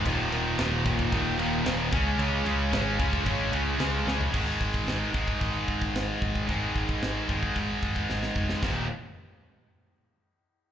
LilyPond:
<<
  \new Staff \with { instrumentName = "Distorted electric guitar" } { \clef bass \time 4/4 \key aes \dorian \tempo 4 = 112 <ees, bes, ees>8 <ees, bes, ees>8 <ees, bes, ees>8 <ees, bes, ees>8 <ees, bes, ees>8 <ees, bes, ees>8 <ees, bes, ees>8 <des aes des'>8 | <des aes des'>8 <des aes des'>8 <des aes des'>8 <des aes des'>8 <des aes des'>8 <des aes des'>8 <des aes des'>8 <des aes des'>8 | <aes, ees aes>4. <aes, ees aes>2~ <aes, ees aes>8 | <aes, ees aes>4. <aes, ees aes>2~ <aes, ees aes>8 |
<ees, bes, ees>8 r2. r8 | }
  \new Staff \with { instrumentName = "Distorted electric guitar" } { \clef bass \time 4/4 \key aes \dorian <ees, bes, ees>8 <ees, bes, ees>8 <ees, bes, ees>8 <ees, bes, ees>8 <ees, bes, ees>8 <ees, bes, ees>8 <ees, bes, ees>8 <des aes des'>8 | <des aes des'>8 <des aes des'>8 <des aes des'>8 <des aes des'>8 <des aes des'>8 <des aes des'>8 <des aes des'>8 <des aes des'>8 | <aes, ees aes>1 | <aes, ees aes>1 |
<ees, bes, ees>8 r2. r8 | }
  \new Staff \with { instrumentName = "Distorted electric guitar" } { \clef bass \time 4/4 \key aes \dorian <ees, bes, ees>2 <ees, bes, ees>4. <des aes des'>8~ | <des aes des'>4. <des aes des'>2 r8 | r1 | r1 |
r1 | }
  \new Staff \with { instrumentName = "Fingered electric bass" } { \clef bass \time 4/4 \key aes \dorian ees,,4 ees,,4 ees,,4 ees,,8 des,8 | des,8 des,8 aes,,8 des,8 aes,,8 des,8 des,8 des,8 | aes,,8 aes,,8 aes,,8 aes,,8 aes,,8 aes,,8 aes,,8 aes,,8 | aes,,8 aes,,8 aes,,8 aes,,8 aes,,8 aes,,8 aes,,8 f,,8 |
ees,,8 r2. r8 | }
  \new DrumStaff \with { instrumentName = "Drums" } \drummode { \time 4/4 <bd cymr>8 cymr8 <cymr sn>8 <bd cymr>16 bd16 <bd cymr>8 cymr8 <cymr sn>8 <bd cymr>8 | cymr8 cymr8 <cymr sn>8 <bd cymr>16 bd16 <bd cymr>8 cymr8 <cymr sn>8 sn16 tomfh16 | <cymc bd>8 bd16 bd16 <hho sn>8 bd16 bd16 <hho bd>8 bd16 bd16 <hho sn>8 bd16 bd16 | <hho bd>8 bd16 bd16 <hho sn>8 bd16 bd16 <hho bd>8 bd16 bd16 sn16 sn16 bd16 sn16 |
<cymc bd sn>4 r4 r4 r4 | }
>>